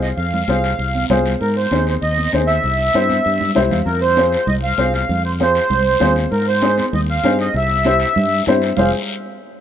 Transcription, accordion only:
0.01 D#5
0.17 F5
1.41 A#4
1.57 C5
1.87 C5
2.03 D#5
2.47 E5
3.85 A#4
4.01 C5
4.34 C5
4.48 D#5
4.64 F5
4.94 F5
5.25 C5
5.41 C5
6.32 A#4
6.47 C5
6.79 C5
6.94 D#5
7.10 F5
7.41 D#5
7.57 E5
8.77 F5

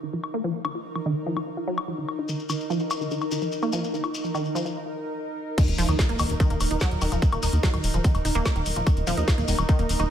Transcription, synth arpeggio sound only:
0.03 D#3
0.13 F3
0.34 A#3
0.44 F3
0.65 D#3
0.75 F4
0.96 F3
1.06 D#3
1.26 F3
1.37 F3
1.57 F4
1.67 F#3
1.88 F3
1.98 D#3
2.19 D#4
2.29 D#3
2.50 D#3
2.70 F3
2.80 F4
3.01 D#3
3.11 D#3
3.32 D#3
3.42 F3
3.63 A#3
3.73 F3
3.93 D#3
4.04 F4
4.24 F3
4.34 D#3
4.55 F3
4.65 F3
5.58 D#3
5.78 F3
5.89 D#4
6.09 A#3
6.19 D#3
6.40 D#3
6.50 A#3
6.71 D#4
6.81 F#3
7.02 D#3
7.12 F3
7.33 A#3
7.43 D#4
7.63 F#3
7.74 D#3
7.94 F3
8.04 D#3
8.25 D#4
8.35 A#3
8.56 D#3
8.76 F3
8.87 D#3
9.07 F3
9.17 D#4
9.38 A#3
9.48 D#3
9.69 D#3
9.79 A#3
10.00 D#4

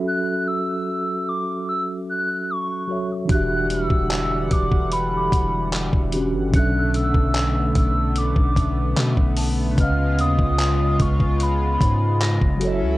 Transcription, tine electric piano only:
Already playing: F#3 C#4 F#4 A4 E5
2.87 F#3 F#4 A4 C#5
2.92 E5
3.25 E3 D4
3.30 F#4 G4
3.35 E5
6.11 E3 D4 F#4 G4
6.16 C#4
6.49 B2 F#3 C#4
6.55 D4 A4 E5
9.74 C#3 C#4
9.79 B4 D#5
9.83 F5
12.57 F#3 F#4
12.62 A4 C#5
12.67 D#5
12.74 E5

